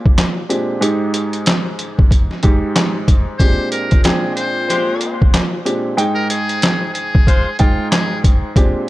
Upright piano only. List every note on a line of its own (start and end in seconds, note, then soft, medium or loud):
0.00 0.39 A#2 loud
0.00 0.39 G#3 medium
0.00 0.39 C4 medium
0.00 0.39 D4 medium
0.00 0.39 G4 loud
0.49 0.79 A#2 medium
0.49 0.79 G#3 medium
0.49 0.80 C4 medium
0.49 0.80 D4 medium
0.49 0.80 G4 medium
0.81 2.32 G#2 medium
0.81 2.32 G#3 medium
0.81 2.32 D#4 medium
0.81 2.32 G4 loud
2.43 3.33 G#2 medium
2.43 3.34 G#3 medium
2.43 3.34 D#4 medium
2.43 3.34 G4 loud
3.40 4.00 A#2 medium
3.40 4.00 G#3 medium
3.40 4.01 C4 medium
3.40 4.01 D4 medium
3.40 4.01 G4 loud
4.04 5.55 A#2 loud
4.04 5.55 G#3 medium
4.04 5.55 C4 medium
4.04 5.55 D4 medium
4.04 5.55 G5 loud
5.65 5.96 A#2 medium
5.65 5.96 G#3 medium
5.65 5.96 C4 medium
5.65 5.96 D4 medium
5.65 5.96 G4 medium
5.97 7.48 G#2 medium
5.97 7.48 G#3 medium
5.97 7.49 D#4 medium
5.97 7.49 G5 loud
7.59 8.50 G#2 loud
7.59 8.50 G#3 medium
7.59 8.50 D#4 medium
7.59 8.50 G5 loud
8.56 8.89 A#2 medium
8.56 8.89 G#3 medium
8.56 8.89 C4 medium
8.56 8.89 D4 medium
8.56 8.89 G4 loud